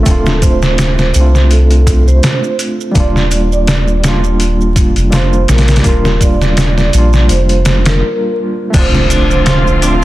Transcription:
0.00 0.03 A3 medium
0.00 1.09 A3 medium
0.00 0.05 C4 medium
0.00 0.08 D4 medium
0.00 0.11 F4 medium
0.05 1.12 D1 loud
0.05 1.10 C4 medium
0.05 1.12 D4 medium
0.05 0.39 A4 medium
0.05 kick loud
0.05 closed hi-hat medium
0.05 maracas soft
0.11 1.13 F4 medium
0.26 snare soft
0.26 maracas soft
0.42 0.92 C5 medium
0.42 kick medium
0.42 closed hi-hat medium
0.42 maracas medium
0.62 snare soft
0.62 maracas soft
0.78 snare loud
0.78 closed hi-hat medium
0.78 maracas soft
0.98 1.46 C5 medium
0.98 snare soft
0.98 maracas soft
1.12 2.20 C2 medium
1.12 2.90 A3 medium
1.12 2.92 C4 medium
1.12 closed hi-hat medium
1.12 maracas medium
1.18 2.93 D4 medium
1.18 2.94 F4 medium
1.35 snare soft
1.35 maracas soft
1.51 2.01 A4 medium
1.51 closed hi-hat medium
1.51 maracas soft
1.71 closed hi-hat soft
1.71 maracas soft
1.87 kick medium
1.87 closed hi-hat medium
1.87 maracas medium
2.07 2.55 C5 medium
2.07 maracas soft
2.23 snare loud
2.23 closed hi-hat medium
2.23 maracas medium
2.44 maracas soft
2.59 closed hi-hat medium
2.59 maracas medium
2.81 maracas soft
2.91 3.98 G3 medium
2.91 3.99 A#3 medium
2.91 kick loud
2.91 closed hi-hat medium
2.91 maracas soft
2.95 4.92 D#1 loud
2.95 4.01 D4 medium
2.95 3.46 D5 medium
3.00 4.02 F4 loud
3.16 snare soft
3.16 maracas soft
3.31 closed hi-hat medium
3.31 maracas medium
3.52 4.00 D5 medium
3.52 maracas soft
3.67 snare loud
3.67 closed hi-hat medium
3.67 maracas soft
3.88 maracas soft
4.00 5.06 G3 medium
4.00 5.08 A#3 medium
4.00 closed hi-hat medium
4.04 5.09 D4 medium
4.04 snare loud
4.04 maracas medium
4.08 5.11 F4 medium
4.24 maracas soft
4.40 closed hi-hat medium
4.40 maracas soft
4.61 maracas soft
4.76 kick medium
4.76 closed hi-hat medium
4.76 maracas medium
4.96 5.45 F1 medium
4.96 closed hi-hat soft
4.96 maracas soft
5.10 5.34 G3 medium
5.10 5.35 A#3 medium
5.10 5.36 D4 medium
5.10 5.46 C5 medium
5.10 snare loud
5.10 closed hi-hat medium
5.10 maracas soft
5.15 5.36 F4 loud
5.33 maracas soft
5.48 5.81 A#1 medium
5.48 5.82 A#4 medium
5.48 snare medium
5.48 closed hi-hat medium
5.48 maracas medium
5.58 snare medium
5.58 closed hi-hat medium
5.68 snare medium
5.68 closed hi-hat medium
5.68 maracas soft
5.76 snare medium
5.76 closed hi-hat medium
5.80 6.87 G3 medium
5.80 6.88 A#3 medium
5.80 closed hi-hat medium
5.84 6.90 D#1 medium
5.84 6.90 D4 medium
5.84 6.18 A#4 medium
5.84 kick loud
5.84 maracas soft
5.89 6.91 F4 loud
6.05 snare soft
6.05 maracas soft
6.21 6.72 D5 loud
6.21 kick medium
6.21 closed hi-hat medium
6.21 maracas medium
6.42 snare soft
6.42 maracas soft
6.57 snare loud
6.57 closed hi-hat medium
6.57 maracas soft
6.78 7.25 D5 medium
6.78 snare soft
6.78 maracas soft
6.90 7.29 A#1 loud
6.90 7.97 G3 medium
6.90 7.98 A#3 medium
6.90 closed hi-hat medium
6.90 maracas medium
6.95 7.99 D4 medium
6.95 8.01 F4 medium
7.13 snare soft
7.13 maracas soft
7.29 8.02 F1 medium
7.29 7.79 C5 medium
7.29 closed hi-hat medium
7.29 maracas soft
7.49 closed hi-hat soft
7.49 maracas soft
7.65 snare loud
7.65 closed hi-hat medium
7.65 maracas medium
7.85 8.33 A#4 medium
7.85 snare loud
7.85 closed hi-hat medium
7.85 maracas soft
8.70 10.04 D1 loud
8.70 9.76 A3 medium
8.70 9.78 C4 medium
8.70 8.85 D4 medium
8.70 kick loud
8.70 impact medium
8.70 maracas medium
8.74 10.04 D3 medium
8.74 10.04 F3 medium
8.74 10.04 C4 medium
8.74 9.79 D4 medium
8.74 10.04 F4 medium
8.74 9.25 C5 medium
8.74 closed hi-hat medium
8.74 crash medium
8.79 9.81 F4 loud
8.94 snare soft
8.94 maracas soft
9.10 9.44 D4 medium
9.10 closed hi-hat medium
9.10 maracas medium
9.30 9.78 C5 medium
9.30 maracas soft
9.46 9.65 F4 loud
9.46 snare loud
9.46 closed hi-hat medium
9.46 maracas soft
9.67 maracas soft
9.79 10.04 A3 medium
9.79 10.04 C4 medium
9.79 closed hi-hat medium
9.83 9.94 D4 medium
9.83 10.04 D4 medium
9.83 maracas medium
9.87 10.04 F4 loud

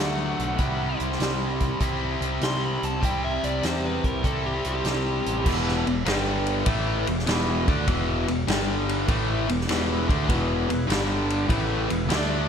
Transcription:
0.00 0.33 D2 medium
0.00 0.57 D3 medium
0.00 0.58 F#3 medium
0.00 0.58 A3 medium
0.00 0.59 D4 medium
0.00 0.97 F#5 medium
0.39 0.56 B1 medium
0.39 closed hi-hat medium
0.57 0.94 C2 medium
0.57 1.79 C3 medium
0.57 1.80 G3 medium
0.57 1.82 C4 medium
0.57 1.82 E4 medium
0.57 kick loud
0.57 closed hi-hat medium
1.00 1.17 C2 medium
1.00 closed hi-hat medium
1.12 snare soft
1.19 1.72 C2 medium
1.19 snare loud
1.19 closed hi-hat medium
1.60 kick medium
1.60 closed hi-hat medium
1.79 2.16 C2 medium
1.79 2.99 C3 medium
1.79 3.00 G3 medium
1.79 3.01 C4 medium
1.79 3.02 E4 medium
1.79 kick loud
1.79 closed hi-hat medium
2.21 2.38 C2 medium
2.21 closed hi-hat medium
2.41 2.77 C2 medium
2.41 2.63 C6 medium
2.41 snare loud
2.41 closed hi-hat medium
2.65 2.83 B5 medium
2.83 3.00 C2 medium
2.83 3.03 A5 medium
2.83 closed hi-hat medium
3.00 3.38 C2 medium
3.00 4.21 C3 medium
3.00 4.22 G3 medium
3.00 4.23 C4 medium
3.00 4.23 E4 medium
3.00 kick medium
3.00 closed hi-hat medium
3.05 3.24 G5 medium
3.24 3.44 E5 medium
3.43 3.61 C2 medium
3.43 3.64 D5 medium
3.43 closed hi-hat soft
3.63 3.98 E2 medium
3.63 3.85 C5 medium
3.63 snare loud
3.63 closed hi-hat medium
3.85 4.05 B4 medium
4.04 4.21 C2 medium
4.04 4.26 A#4 medium
4.04 kick medium
4.04 closed hi-hat medium
4.23 4.60 C2 medium
4.23 5.44 C3 medium
4.23 5.45 G3 medium
4.23 5.45 C4 medium
4.23 5.46 E4 medium
4.23 4.45 A4 medium
4.23 kick loud
4.23 closed hi-hat medium
4.46 4.65 G4 medium
4.64 4.82 C2 medium
4.64 5.45 G4 medium
4.64 closed hi-hat medium
4.84 5.20 C2 medium
4.84 snare loud
4.84 closed hi-hat medium
5.26 5.43 A1 medium
5.26 closed hi-hat medium
5.45 5.84 E1 loud
5.45 5.84 E2 medium
5.45 5.85 B2 medium
5.45 5.86 E3 medium
5.45 kick loud
5.45 crash loud
5.68 snare soft
5.85 6.05 E1 medium
5.85 6.05 E2 medium
5.85 6.02 B2 medium
5.85 ride medium
6.05 6.63 G1 medium
6.05 6.66 G2 loud
6.05 6.65 D3 loud
6.05 6.65 G3 loud
6.05 snare loud
6.05 ride medium
6.46 ride medium
6.65 7.05 A1 medium
6.65 7.06 A2 medium
6.65 7.06 E3 medium
6.65 7.07 A3 loud
6.65 kick loud
6.65 ride medium
7.07 7.26 E1 medium
7.07 7.23 E2 medium
7.07 7.24 B2 medium
7.07 ride medium
7.19 snare soft
7.27 7.65 E1 medium
7.27 7.67 E2 medium
7.27 7.67 B2 loud
7.27 7.67 E3 loud
7.27 snare loud
7.27 ride medium
7.67 7.86 D2 medium
7.67 7.87 D3 medium
7.67 7.87 A3 loud
7.67 7.88 D4 medium
7.67 kick loud
7.67 ride medium
7.87 8.26 E1 medium
7.87 8.27 E2 medium
7.87 8.27 B2 medium
7.87 8.27 E3 medium
7.87 kick loud
7.87 ride medium
8.27 8.46 E1 medium
8.27 8.44 E2 medium
8.27 8.44 B2 medium
8.27 ride medium
8.47 9.04 G1 loud
8.47 9.08 G2 loud
8.47 9.07 D3 loud
8.47 9.08 G3 loud
8.47 snare loud
8.47 ride medium
8.89 ride medium
9.07 9.46 A1 loud
9.07 9.47 A2 medium
9.07 9.48 E3 loud
9.07 9.48 A3 loud
9.07 kick loud
9.07 ride loud
9.47 9.67 E1 medium
9.47 9.64 E2 medium
9.47 9.64 B2 medium
9.47 ride medium
9.61 snare soft
9.68 10.07 E1 loud
9.68 10.08 E2 loud
9.68 10.08 B2 medium
9.68 10.08 E3 loud
9.68 snare loud
9.68 ride loud
10.08 10.28 D2 medium
10.08 10.28 D3 loud
10.08 10.28 A3 medium
10.08 10.28 D4 medium
10.08 kick loud
10.08 ride medium
10.28 10.67 E1 loud
10.28 10.68 E2 medium
10.28 10.68 B2 medium
10.28 10.68 E3 loud
10.28 10.89 B3 medium
10.28 10.89 E4 medium
10.28 10.89 G#4 medium
10.28 10.89 B4 medium
10.28 kick loud
10.28 ride loud
10.69 10.88 E1 medium
10.69 10.85 E2 medium
10.69 10.86 B2 medium
10.69 ride medium
10.87 11.45 G1 medium
10.87 11.48 G2 loud
10.87 11.47 D3 loud
10.87 11.48 G3 loud
10.87 11.49 G3 medium
10.87 11.49 D4 medium
10.87 11.49 G4 medium
10.87 11.49 D5 medium
10.87 ride loud
10.92 snare loud
11.30 ride medium
11.48 11.87 A1 medium
11.48 11.88 A2 medium
11.48 11.88 E3 loud
11.48 11.89 A3 loud
11.48 12.09 B3 medium
11.48 12.09 E4 medium
11.48 12.09 G#4 medium
11.48 12.09 B4 medium
11.48 kick loud
11.48 ride medium
11.89 12.08 E1 medium
11.89 12.05 E2 medium
11.89 12.08 B2 medium
11.89 ride medium
12.08 12.48 D2 loud
12.08 12.48 D3 loud
12.08 12.48 A3 loud
12.08 12.48 A3 medium
12.08 12.48 D4 loud
12.08 12.48 D4 medium
12.08 12.48 A4 medium
12.08 12.48 D5 medium
12.08 snare loud
12.08 ride medium

